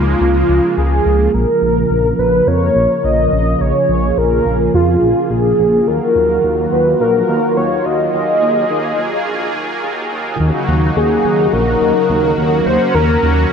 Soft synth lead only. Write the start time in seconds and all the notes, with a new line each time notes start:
Already playing: F4
0.78 G#4
1.34 A#4
2.19 B4
2.48 C#5
3.04 D#5
3.61 C#5
4.18 A#4
4.74 F4
5.31 G#4
5.87 A#4
6.72 B4
7.01 A#4
7.57 C#5
7.85 D#5
10.97 G#4
11.53 A#4
12.66 C5
12.95 A#4